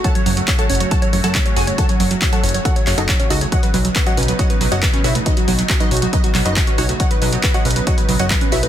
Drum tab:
HH |x-x-o-x-x-x-oxx-x-x-o-x-x-x-o-x-|x-x-o-x-x-x-oxx-x-x-o-x-x-x-o-x-|x-x-o-x-x-x-oxx-x-x-o-x-x-x-o-x-|x-x-o-x-x-x-oxx-x-x-o-x-x-x-o-x-|
CP |--------x---------------x-------|--------x-----------x---x-------|--------x---------------x-------|--------x-----------x---x-------|
BD |o-------o-------o-------o-------|o-------o-------o-------o-------|o-------o-------o-------o-------|o-------o-------o-------o-------|

HH |x-x-o-x-x-x-oxx-x-x-o-x-x-x-o-x-|
CP |--------x---------------x-------|
BD |o-------o-------o-------o-------|